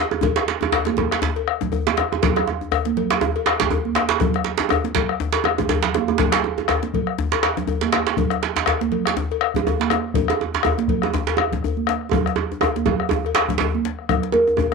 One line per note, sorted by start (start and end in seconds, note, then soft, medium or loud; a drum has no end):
0.11 bombo rim soft
0.11 djembe tone medium
0.21 bombo low medium
0.21 cowbell medium
0.21 djembe tone medium
0.21 djembe bass medium
0.21 low conga medium
0.36 bombo rim medium
0.36 djembe slap medium
0.48 bombo rim soft
0.48 djembe slap medium
0.48 high conga soft
0.61 djembe tone medium
0.61 high conga soft
0.63 djembe tone loud
0.72 bombo rim medium
0.72 cowbell medium
0.72 djembe slap soft
0.72 djembe slap medium
0.72 djembe bass medium
0.85 djembe slap medium
0.85 high conga medium
0.85 djembe tone medium
0.97 bombo low medium
0.97 cowbell medium
0.97 djembe tone medium
0.97 low conga medium
1.11 bombo rim medium
1.11 djembe slap medium
1.22 bombo rim soft
1.22 djembe slap medium
1.22 high conga soft
1.22 djembe bass medium
1.36 cowbell medium
1.36 djembe slap soft
1.47 bombo rim medium
1.47 djembe slap soft
1.61 bombo low medium
1.61 djembe slap medium
1.61 djembe tone medium
1.61 low conga medium
1.72 bombo rim soft
1.72 cowbell soft
1.72 djembe slap soft
1.72 djembe bass medium
1.87 djembe slap medium
1.87 high conga medium
1.97 bombo rim loud
1.97 djembe slap medium
1.97 djembe tone medium
2.12 bombo rim soft
2.12 djembe tone medium
2.23 bombo low loud
2.23 cowbell medium
2.23 djembe slap medium
2.23 djembe bass medium
2.23 low conga medium
2.36 bombo rim medium
2.36 djembe slap soft
2.36 djembe tone medium
2.48 bombo rim soft
2.48 djembe tone medium
2.61 djembe tone soft
2.72 bombo rim loud
2.72 cowbell soft
2.72 djembe slap soft
2.72 djembe bass medium
2.85 djembe slap soft
2.85 high conga medium
2.97 cowbell soft
2.97 low conga medium
3.10 bombo rim medium
3.10 djembe slap loud
3.21 bombo rim soft
3.21 djembe slap medium
3.21 djembe tone medium
3.21 djembe bass medium
3.36 cowbell medium
3.36 djembe slap soft
3.46 bombo rim loud
3.46 djembe slap medium
3.46 djembe slap soft
3.60 bombo low medium
3.60 djembe slap loud
3.60 djembe slap soft
3.60 djembe tone soft
3.60 low conga medium
3.70 bombo rim soft
3.70 cowbell medium
3.70 djembe slap soft
3.70 djembe tone medium
3.70 djembe bass medium
3.85 high conga medium
3.95 bombo rim medium
3.95 djembe slap medium
4.09 bombo rim soft
4.09 djembe slap loud
4.20 bombo rim soft
4.20 bombo low loud
4.20 cowbell medium
4.20 djembe tone medium
4.20 djembe bass medium
4.20 low conga medium
4.34 bombo rim medium
4.34 djembe slap soft
4.44 bombo rim soft
4.44 djembe slap medium
4.44 high conga soft
4.58 bombo rim soft
4.58 djembe slap loud
4.60 djembe slap soft
4.60 djembe tone medium
4.69 bombo rim loud
4.69 cowbell soft
4.69 djembe tone medium
4.69 djembe bass medium
4.84 djembe slap medium
4.84 high conga medium
4.95 bombo rim soft
4.95 bombo low medium
4.95 cowbell medium
4.95 djembe slap medium
4.95 low conga medium
5.09 bombo rim medium
5.20 bombo rim soft
5.20 djembe slap medium
5.20 djembe bass medium
5.33 cowbell medium
5.33 djembe slap medium
5.44 bombo rim loud
5.44 djembe tone medium
5.44 high conga soft
5.58 bombo low medium
5.58 djembe slap medium
5.58 djembe tone medium
5.58 low conga medium
5.69 bombo rim soft
5.69 cowbell medium
5.69 djembe slap medium
5.69 djembe bass medium
5.69 low conga soft
5.83 bombo rim soft
5.83 djembe slap medium
5.83 low conga medium
5.94 djembe slap medium
5.94 djembe tone medium
5.94 high conga medium
6.08 djembe slap soft
6.08 djembe tone medium
6.08 high conga medium
6.18 bombo low medium
6.18 cowbell medium
6.18 djembe slap medium
6.18 djembe bass medium
6.18 low conga medium
6.32 bombo rim medium
6.32 djembe slap loud
6.32 djembe slap medium
6.44 djembe tone medium
6.44 high conga soft
6.58 djembe tone medium
6.68 bombo rim medium
6.68 cowbell soft
6.68 djembe slap medium
6.68 djembe slap soft
6.68 djembe bass medium
6.83 djembe slap medium
6.83 high conga medium
6.94 bombo low medium
6.94 cowbell medium
6.94 low conga medium
7.07 bombo rim medium
7.18 bombo rim soft
7.18 djembe slap medium
7.18 high conga soft
7.18 djembe bass medium
7.32 cowbell medium
7.32 djembe slap medium
7.43 bombo rim medium
7.43 djembe slap medium
7.43 djembe slap soft
7.57 djembe slap medium
7.57 djembe tone medium
7.57 low conga medium
7.67 bombo rim soft
7.67 cowbell soft
7.67 djembe slap soft
7.67 djembe bass medium
7.81 djembe slap medium
7.81 high conga medium
7.92 bombo rim medium
7.92 djembe slap loud
7.92 djembe slap medium
8.07 bombo rim soft
8.07 djembe slap medium
8.17 bombo low medium
8.17 cowbell soft
8.17 djembe bass medium
8.17 low conga medium
8.30 bombo rim medium
8.30 djembe slap medium
8.42 bombo rim soft
8.42 djembe slap medium
8.56 djembe slap medium
8.56 djembe tone medium
8.56 high conga soft
8.66 bombo rim loud
8.66 cowbell soft
8.66 djembe slap soft
8.66 djembe slap medium
8.66 djembe bass medium
8.81 djembe slap medium
8.81 high conga medium
8.92 cowbell medium
8.92 low conga medium
9.05 bombo rim medium
9.05 djembe slap medium
9.17 bombo rim soft
9.17 djembe slap medium
9.17 high conga soft
9.17 djembe bass medium
9.31 cowbell medium
9.31 djembe slap soft
9.41 bombo rim loud
9.41 djembe slap soft
9.54 bombo low medium
9.54 djembe slap medium
9.54 djembe tone medium
9.54 low conga medium
9.65 bombo rim soft
9.65 cowbell medium
9.65 djembe slap soft
9.65 djembe tone medium
9.65 djembe bass medium
9.80 djembe slap medium
9.80 high conga medium
9.90 bombo rim loud
9.90 djembe slap medium
9.90 djembe tone medium
10.04 bombo rim soft
10.14 bombo low loud
10.14 cowbell medium
10.14 low conga medium
10.14 djembe bass medium
10.28 bombo rim medium
10.28 djembe slap medium
10.28 djembe tone medium
10.39 bombo rim soft
10.39 high conga soft
10.39 djembe tone medium
10.53 djembe slap medium
10.53 high conga soft
10.53 djembe tone medium
10.63 bombo rim loud
10.63 cowbell soft
10.63 djembe slap soft
10.63 djembe tone medium
10.63 djembe bass medium
10.78 djembe slap medium
10.78 high conga medium
10.88 bombo low medium
10.88 cowbell medium
10.88 low conga medium
11.02 bombo rim medium
11.02 djembe tone medium
11.14 bombo rim soft
11.14 djembe slap medium
11.14 djembe tone medium
11.14 djembe bass medium
11.27 cowbell medium
11.27 djembe slap medium
11.27 djembe slap soft
11.37 bombo rim loud
11.37 djembe slap soft
11.37 djembe tone medium
11.52 bombo low medium
11.52 djembe slap soft
11.52 djembe tone medium
11.52 low conga medium
11.63 bombo rim soft
11.63 cowbell soft
11.63 djembe slap soft
11.63 djembe bass medium
11.77 high conga medium
11.87 bombo rim medium
11.87 djembe slap medium
12.01 bombo rim soft
12.11 bombo rim soft
12.11 bombo low medium
12.11 cowbell soft
12.11 djembe tone medium
12.11 low conga medium
12.11 djembe bass medium
12.26 bombo rim medium
12.26 djembe slap medium
12.36 bombo rim soft
12.36 djembe slap soft
12.36 djembe tone loud
12.52 djembe tone medium
12.61 bombo rim medium
12.61 cowbell soft
12.61 djembe slap soft
12.61 djembe tone medium
12.61 high conga soft
12.61 djembe bass medium
12.76 djembe slap medium
12.76 high conga medium
12.86 bombo low medium
12.86 cowbell soft
12.86 djembe tone loud
12.86 high conga soft
12.86 low conga medium
13.00 bombo rim medium
13.09 djembe slap medium
13.09 djembe tone medium
13.09 high conga soft
13.09 djembe bass medium
13.25 bombo rim soft
13.25 cowbell medium
13.35 bombo rim loud
13.35 djembe slap loud
13.36 djembe slap soft
13.48 bombo rim soft
13.48 bombo low medium
13.48 djembe slap medium
13.48 djembe tone medium
13.48 low conga medium
13.58 djembe slap medium
13.60 cowbell soft
13.60 djembe slap soft
13.60 djembe bass medium
13.75 high conga medium
13.85 djembe slap medium
13.85 high conga soft
13.99 bombo rim soft
14.09 bombo rim medium
14.09 bombo low medium
14.09 cowbell soft
14.09 low conga medium
14.09 djembe bass medium
14.22 bombo rim soft
14.22 djembe slap soft
14.32 14.73 A#4 medium
14.32 djembe tone medium
14.32 high conga medium
14.47 bombo rim soft
14.47 djembe tone medium
14.57 bombo low medium
14.57 cowbell soft
14.57 djembe tone medium
14.57 djembe bass medium